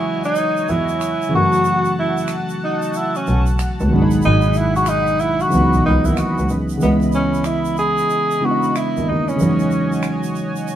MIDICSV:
0, 0, Header, 1, 6, 480
1, 0, Start_track
1, 0, Key_signature, 4, "minor"
1, 0, Tempo, 645161
1, 1225, Time_signature, 4, 2, 24, 8
1, 8002, End_track
2, 0, Start_track
2, 0, Title_t, "Analog synth pad"
2, 0, Program_c, 0, 89
2, 0, Note_on_c, 0, 66, 75
2, 0, Note_on_c, 0, 73, 65
2, 0, Note_on_c, 0, 75, 63
2, 0, Note_on_c, 0, 80, 83
2, 954, Note_off_c, 0, 75, 0
2, 966, Note_off_c, 0, 73, 0
2, 967, Note_off_c, 0, 80, 0
2, 989, Note_on_c, 0, 81, 84
2, 990, Note_on_c, 0, 78, 75
2, 2872, Note_off_c, 0, 66, 0
2, 2888, Note_off_c, 0, 78, 0
2, 2888, Note_off_c, 0, 81, 0
2, 2901, Note_on_c, 0, 83, 85
2, 2904, Note_on_c, 0, 78, 80
2, 2905, Note_on_c, 0, 68, 74
2, 4093, Note_off_c, 0, 68, 0
2, 4109, Note_on_c, 0, 52, 73
2, 4112, Note_on_c, 0, 75, 73
2, 5042, Note_off_c, 0, 83, 0
2, 5043, Note_off_c, 0, 78, 0
2, 5057, Note_off_c, 0, 52, 0
2, 5059, Note_off_c, 0, 75, 0
2, 5073, Note_on_c, 0, 75, 62
2, 5076, Note_on_c, 0, 64, 75
2, 5079, Note_on_c, 0, 83, 76
2, 6972, Note_off_c, 0, 64, 0
2, 6973, Note_off_c, 0, 83, 0
2, 6994, Note_on_c, 0, 80, 80
2, 6995, Note_on_c, 0, 73, 64
2, 6997, Note_on_c, 0, 66, 74
2, 8002, Note_off_c, 0, 66, 0
2, 8002, Note_off_c, 0, 73, 0
2, 8002, Note_off_c, 0, 75, 0
2, 8002, Note_off_c, 0, 80, 0
2, 8002, End_track
3, 0, Start_track
3, 0, Title_t, "Tenor saxophone"
3, 0, Program_c, 1, 66
3, 0, Note_on_c, 1, 64, 100
3, 181, Note_off_c, 1, 64, 0
3, 187, Note_on_c, 1, 63, 95
3, 523, Note_on_c, 1, 64, 99
3, 535, Note_off_c, 1, 63, 0
3, 994, Note_off_c, 1, 64, 0
3, 1007, Note_on_c, 1, 66, 108
3, 1447, Note_off_c, 1, 66, 0
3, 1484, Note_on_c, 1, 64, 88
3, 1744, Note_off_c, 1, 64, 0
3, 1965, Note_on_c, 1, 63, 85
3, 2212, Note_on_c, 1, 64, 86
3, 2223, Note_off_c, 1, 63, 0
3, 2357, Note_on_c, 1, 61, 74
3, 2368, Note_off_c, 1, 64, 0
3, 2585, Note_off_c, 1, 61, 0
3, 3164, Note_on_c, 1, 63, 98
3, 3404, Note_on_c, 1, 64, 95
3, 3415, Note_off_c, 1, 63, 0
3, 3539, Note_off_c, 1, 64, 0
3, 3543, Note_on_c, 1, 66, 110
3, 3637, Note_on_c, 1, 63, 107
3, 3648, Note_off_c, 1, 66, 0
3, 3875, Note_on_c, 1, 64, 97
3, 3886, Note_off_c, 1, 63, 0
3, 4027, Note_on_c, 1, 66, 102
3, 4038, Note_off_c, 1, 64, 0
3, 4352, Note_off_c, 1, 66, 0
3, 4358, Note_on_c, 1, 63, 86
3, 4508, Note_on_c, 1, 64, 81
3, 4519, Note_off_c, 1, 63, 0
3, 4600, Note_on_c, 1, 66, 83
3, 4611, Note_off_c, 1, 64, 0
3, 4833, Note_off_c, 1, 66, 0
3, 5076, Note_on_c, 1, 59, 80
3, 5182, Note_off_c, 1, 59, 0
3, 5318, Note_on_c, 1, 61, 89
3, 5546, Note_on_c, 1, 64, 94
3, 5558, Note_off_c, 1, 61, 0
3, 5786, Note_off_c, 1, 64, 0
3, 5794, Note_on_c, 1, 68, 102
3, 6289, Note_on_c, 1, 66, 91
3, 6300, Note_off_c, 1, 68, 0
3, 6522, Note_on_c, 1, 64, 93
3, 6533, Note_off_c, 1, 66, 0
3, 6763, Note_on_c, 1, 63, 85
3, 6774, Note_off_c, 1, 64, 0
3, 6908, Note_on_c, 1, 61, 82
3, 6919, Note_off_c, 1, 63, 0
3, 7621, Note_off_c, 1, 61, 0
3, 8002, End_track
4, 0, Start_track
4, 0, Title_t, "Tine electric piano"
4, 0, Program_c, 2, 4
4, 0, Control_c, 2, 64, 127
4, 0, Note_on_c, 2, 49, 59
4, 0, Note_on_c, 2, 52, 55
4, 0, Note_on_c, 2, 54, 60
4, 0, Note_on_c, 2, 56, 56
4, 0, Note_on_c, 2, 75, 70
4, 944, Note_off_c, 2, 49, 0
4, 949, Note_off_c, 2, 52, 0
4, 958, Note_off_c, 2, 54, 0
4, 961, Note_on_c, 2, 49, 65
4, 965, Note_off_c, 2, 56, 0
4, 972, Note_off_c, 2, 75, 0
4, 976, Note_on_c, 2, 52, 60
4, 992, Note_on_c, 2, 54, 60
4, 994, Control_c, 2, 64, 0
4, 1006, Note_on_c, 2, 57, 64
4, 1020, Note_on_c, 2, 66, 76
4, 1124, Control_c, 2, 64, 127
4, 2864, Note_off_c, 2, 49, 0
4, 2871, Note_off_c, 2, 52, 0
4, 2879, Note_off_c, 2, 54, 0
4, 2883, Note_on_c, 2, 47, 80
4, 2886, Note_off_c, 2, 57, 0
4, 2893, Note_off_c, 2, 66, 0
4, 2898, Note_on_c, 2, 51, 71
4, 2913, Note_on_c, 2, 54, 68
4, 2916, Control_c, 2, 64, 0
4, 2925, Note_on_c, 2, 56, 71
4, 2940, Note_on_c, 2, 62, 64
4, 2982, Note_off_c, 2, 62, 0
4, 2989, Note_on_c, 2, 63, 93
4, 3028, Control_c, 2, 64, 127
4, 4070, Note_off_c, 2, 47, 0
4, 4078, Note_off_c, 2, 51, 0
4, 4081, Note_on_c, 2, 49, 70
4, 4085, Note_off_c, 2, 54, 0
4, 4091, Note_off_c, 2, 56, 0
4, 4095, Note_on_c, 2, 52, 65
4, 4109, Note_on_c, 2, 54, 68
4, 4116, Control_c, 2, 64, 0
4, 4124, Note_off_c, 2, 63, 0
4, 4125, Note_on_c, 2, 59, 66
4, 4141, Note_on_c, 2, 63, 72
4, 4237, Control_c, 2, 64, 127
4, 5030, Note_off_c, 2, 49, 0
4, 5039, Note_on_c, 2, 49, 64
4, 5041, Note_off_c, 2, 52, 0
4, 5048, Note_off_c, 2, 54, 0
4, 5052, Note_on_c, 2, 52, 57
4, 5056, Note_off_c, 2, 59, 0
4, 5064, Note_off_c, 2, 63, 0
4, 5068, Note_on_c, 2, 56, 58
4, 5076, Control_c, 2, 64, 0
4, 5083, Note_on_c, 2, 59, 53
4, 5097, Note_on_c, 2, 75, 73
4, 5196, Control_c, 2, 64, 127
4, 6228, Note_off_c, 2, 49, 0
4, 6235, Note_off_c, 2, 52, 0
4, 6243, Note_off_c, 2, 56, 0
4, 6250, Note_off_c, 2, 59, 0
4, 6256, Note_on_c, 2, 49, 48
4, 6258, Note_off_c, 2, 75, 0
4, 6263, Note_on_c, 2, 64, 45
4, 6270, Note_on_c, 2, 56, 42
4, 6277, Note_on_c, 2, 59, 42
4, 6284, Note_on_c, 2, 62, 40
4, 6334, Note_on_c, 2, 75, 53
4, 6335, Note_off_c, 2, 62, 0
4, 6957, Note_off_c, 2, 49, 0
4, 6966, Note_on_c, 2, 49, 61
4, 6979, Note_on_c, 2, 52, 54
4, 6984, Note_off_c, 2, 64, 0
4, 6987, Note_off_c, 2, 56, 0
4, 6991, Note_off_c, 2, 59, 0
4, 6995, Control_c, 2, 64, 0
4, 6995, Note_on_c, 2, 54, 57
4, 7008, Note_on_c, 2, 55, 46
4, 7019, Note_off_c, 2, 75, 0
4, 7022, Note_on_c, 2, 63, 69
4, 7055, Note_on_c, 2, 56, 54
4, 7057, Note_off_c, 2, 55, 0
4, 7130, Control_c, 2, 64, 127
4, 8002, Note_off_c, 2, 49, 0
4, 8002, Note_off_c, 2, 52, 0
4, 8002, Note_off_c, 2, 54, 0
4, 8002, Note_off_c, 2, 56, 0
4, 8002, Note_off_c, 2, 63, 0
4, 8002, End_track
5, 0, Start_track
5, 0, Title_t, "Double bass"
5, 0, Program_c, 3, 43
5, 0, Note_on_c, 3, 40, 97
5, 152, Note_off_c, 3, 40, 0
5, 519, Note_on_c, 3, 40, 96
5, 818, Note_off_c, 3, 40, 0
5, 1001, Note_on_c, 3, 42, 88
5, 1862, Note_off_c, 3, 42, 0
5, 2443, Note_on_c, 3, 35, 102
5, 2624, Note_off_c, 3, 35, 0
5, 2835, Note_on_c, 3, 37, 96
5, 2898, Note_off_c, 3, 37, 0
5, 2925, Note_on_c, 3, 32, 89
5, 3105, Note_off_c, 3, 32, 0
5, 3165, Note_on_c, 3, 32, 123
5, 3994, Note_off_c, 3, 32, 0
5, 4122, Note_on_c, 3, 37, 103
5, 4232, Note_off_c, 3, 37, 0
5, 4270, Note_on_c, 3, 35, 85
5, 4335, Note_off_c, 3, 35, 0
5, 4363, Note_on_c, 3, 37, 98
5, 4473, Note_off_c, 3, 37, 0
5, 4515, Note_on_c, 3, 39, 92
5, 4578, Note_off_c, 3, 39, 0
5, 4604, Note_on_c, 3, 37, 49
5, 4706, Note_off_c, 3, 37, 0
5, 4750, Note_on_c, 3, 37, 87
5, 4815, Note_off_c, 3, 37, 0
5, 4845, Note_on_c, 3, 49, 79
5, 5025, Note_off_c, 3, 49, 0
5, 5085, Note_on_c, 3, 37, 100
5, 5915, Note_off_c, 3, 37, 0
5, 6677, Note_on_c, 3, 39, 84
5, 6739, Note_off_c, 3, 39, 0
5, 6768, Note_on_c, 3, 39, 81
5, 6947, Note_off_c, 3, 39, 0
5, 7004, Note_on_c, 3, 40, 100
5, 7834, Note_off_c, 3, 40, 0
5, 8002, End_track
6, 0, Start_track
6, 0, Title_t, "Drums"
6, 177, Note_on_c, 9, 82, 46
6, 251, Note_off_c, 9, 82, 0
6, 263, Note_on_c, 9, 82, 60
6, 337, Note_off_c, 9, 82, 0
6, 423, Note_on_c, 9, 82, 45
6, 497, Note_off_c, 9, 82, 0
6, 508, Note_on_c, 9, 82, 39
6, 582, Note_off_c, 9, 82, 0
6, 658, Note_on_c, 9, 82, 49
6, 732, Note_off_c, 9, 82, 0
6, 753, Note_on_c, 9, 26, 64
6, 753, Note_on_c, 9, 82, 64
6, 827, Note_off_c, 9, 26, 0
6, 827, Note_off_c, 9, 82, 0
6, 909, Note_on_c, 9, 82, 41
6, 983, Note_off_c, 9, 82, 0
6, 1136, Note_on_c, 9, 82, 45
6, 1210, Note_off_c, 9, 82, 0
6, 1223, Note_on_c, 9, 82, 68
6, 1298, Note_off_c, 9, 82, 0
6, 1375, Note_on_c, 9, 82, 47
6, 1450, Note_off_c, 9, 82, 0
6, 1617, Note_on_c, 9, 82, 42
6, 1692, Note_off_c, 9, 82, 0
6, 1695, Note_on_c, 9, 26, 66
6, 1695, Note_on_c, 9, 82, 61
6, 1770, Note_off_c, 9, 26, 0
6, 1770, Note_off_c, 9, 82, 0
6, 1853, Note_on_c, 9, 82, 48
6, 1928, Note_off_c, 9, 82, 0
6, 2098, Note_on_c, 9, 82, 47
6, 2173, Note_off_c, 9, 82, 0
6, 2184, Note_on_c, 9, 82, 63
6, 2258, Note_off_c, 9, 82, 0
6, 2345, Note_on_c, 9, 82, 51
6, 2419, Note_off_c, 9, 82, 0
6, 2432, Note_on_c, 9, 82, 40
6, 2506, Note_off_c, 9, 82, 0
6, 2577, Note_on_c, 9, 82, 50
6, 2652, Note_off_c, 9, 82, 0
6, 2672, Note_on_c, 9, 26, 66
6, 2672, Note_on_c, 9, 82, 59
6, 2746, Note_off_c, 9, 26, 0
6, 2746, Note_off_c, 9, 82, 0
6, 2826, Note_on_c, 9, 82, 44
6, 2901, Note_off_c, 9, 82, 0
6, 3056, Note_on_c, 9, 82, 52
6, 3130, Note_off_c, 9, 82, 0
6, 3138, Note_on_c, 9, 82, 62
6, 3213, Note_off_c, 9, 82, 0
6, 3285, Note_on_c, 9, 82, 41
6, 3359, Note_off_c, 9, 82, 0
6, 3375, Note_on_c, 9, 82, 51
6, 3450, Note_off_c, 9, 82, 0
6, 3541, Note_on_c, 9, 82, 45
6, 3615, Note_off_c, 9, 82, 0
6, 3617, Note_on_c, 9, 26, 63
6, 3617, Note_on_c, 9, 82, 72
6, 3692, Note_off_c, 9, 26, 0
6, 3692, Note_off_c, 9, 82, 0
6, 3772, Note_on_c, 9, 82, 48
6, 3846, Note_off_c, 9, 82, 0
6, 3863, Note_on_c, 9, 82, 41
6, 3938, Note_off_c, 9, 82, 0
6, 4016, Note_on_c, 9, 82, 46
6, 4091, Note_off_c, 9, 82, 0
6, 4103, Note_on_c, 9, 82, 67
6, 4177, Note_off_c, 9, 82, 0
6, 4264, Note_on_c, 9, 82, 51
6, 4338, Note_off_c, 9, 82, 0
6, 4500, Note_on_c, 9, 82, 52
6, 4574, Note_off_c, 9, 82, 0
6, 4591, Note_on_c, 9, 26, 61
6, 4591, Note_on_c, 9, 82, 57
6, 4666, Note_off_c, 9, 26, 0
6, 4666, Note_off_c, 9, 82, 0
6, 4748, Note_on_c, 9, 82, 44
6, 4822, Note_off_c, 9, 82, 0
6, 4828, Note_on_c, 9, 82, 45
6, 4903, Note_off_c, 9, 82, 0
6, 4979, Note_on_c, 9, 82, 52
6, 5053, Note_off_c, 9, 82, 0
6, 5064, Note_on_c, 9, 82, 63
6, 5138, Note_off_c, 9, 82, 0
6, 5218, Note_on_c, 9, 82, 40
6, 5293, Note_off_c, 9, 82, 0
6, 5299, Note_on_c, 9, 82, 51
6, 5373, Note_off_c, 9, 82, 0
6, 5460, Note_on_c, 9, 82, 43
6, 5534, Note_off_c, 9, 82, 0
6, 5537, Note_on_c, 9, 26, 55
6, 5537, Note_on_c, 9, 82, 64
6, 5612, Note_off_c, 9, 26, 0
6, 5612, Note_off_c, 9, 82, 0
6, 5691, Note_on_c, 9, 82, 44
6, 5766, Note_off_c, 9, 82, 0
6, 5781, Note_on_c, 9, 82, 41
6, 5856, Note_off_c, 9, 82, 0
6, 5936, Note_on_c, 9, 82, 47
6, 6010, Note_off_c, 9, 82, 0
6, 6025, Note_on_c, 9, 82, 58
6, 6099, Note_off_c, 9, 82, 0
6, 6182, Note_on_c, 9, 82, 47
6, 6256, Note_off_c, 9, 82, 0
6, 6418, Note_on_c, 9, 82, 43
6, 6493, Note_off_c, 9, 82, 0
6, 6515, Note_on_c, 9, 26, 52
6, 6515, Note_on_c, 9, 82, 59
6, 6590, Note_off_c, 9, 26, 0
6, 6590, Note_off_c, 9, 82, 0
6, 6672, Note_on_c, 9, 82, 38
6, 6747, Note_off_c, 9, 82, 0
6, 6907, Note_on_c, 9, 82, 46
6, 6981, Note_off_c, 9, 82, 0
6, 6990, Note_on_c, 9, 82, 65
6, 7064, Note_off_c, 9, 82, 0
6, 7136, Note_on_c, 9, 82, 41
6, 7211, Note_off_c, 9, 82, 0
6, 7224, Note_on_c, 9, 82, 46
6, 7298, Note_off_c, 9, 82, 0
6, 7383, Note_on_c, 9, 82, 40
6, 7457, Note_off_c, 9, 82, 0
6, 7460, Note_on_c, 9, 26, 65
6, 7460, Note_on_c, 9, 82, 62
6, 7535, Note_off_c, 9, 26, 0
6, 7535, Note_off_c, 9, 82, 0
6, 7614, Note_on_c, 9, 82, 48
6, 7688, Note_off_c, 9, 82, 0
6, 7703, Note_on_c, 9, 82, 35
6, 7777, Note_off_c, 9, 82, 0
6, 7856, Note_on_c, 9, 82, 45
6, 7931, Note_off_c, 9, 82, 0
6, 7943, Note_on_c, 9, 82, 54
6, 8002, Note_off_c, 9, 82, 0
6, 8002, End_track
0, 0, End_of_file